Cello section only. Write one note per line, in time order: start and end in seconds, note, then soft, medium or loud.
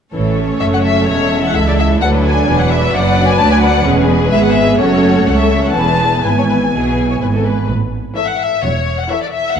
0.14 0.58 A2 soft
0.61 1.07 F#2 soft
1.08 1.55 E2 soft
1.55 2.02 C#2 soft
2.02 2.47 D2 medium
2.48 2.93 E2 soft
2.94 3.39 F#2 medium
3.40 3.85 D2 medium
3.86 4.32 E2 medium
4.33 4.80 G#2 soft
4.81 5.27 F#2 soft
5.28 5.75 C#2 soft
5.77 6.24 E2 soft
6.25 6.72 G#2 soft
6.73 7.20 B2 soft
7.21 7.68 G#2 soft
7.69 8.06 A2 medium
8.64 9.01 E2 soft